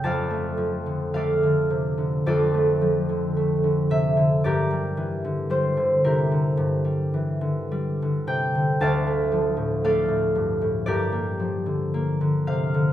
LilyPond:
<<
  \new Staff \with { instrumentName = "Harp" } { \time 4/4 \key d \minor \tempo 4 = 56 << { a''4 f''4 d''4. e''8 | d''4 c''8 bes'2 g''8 | a''4 f''4 d''4. f''8 | } \\ { <a' d'' f''>4 <a' d''>4 <f' a'>2 | <g' bes'>4. <e' g'>2~ <e' g'>8 | <d'' f''>4 <a' d''>4 <g' bes'>2 | } >> }
  \new Staff \with { instrumentName = "Harp" } { \clef bass \time 4/4 \key d \minor <f, a>16 a16 f16 d16 a16 d16 c16 d16 f,16 a16 f16 d16 a16 d16 c16 d16 | g,16 g16 e16 d16 g16 d16 c16 d16 g,16 g16 e16 d16 g16 d16 c16 d16 | d,16 a16 f16 a,16 a16 a,16 g,16 a,16 g,16 bes16 f16 d16 bes16 d16 c16 d16 | }
>>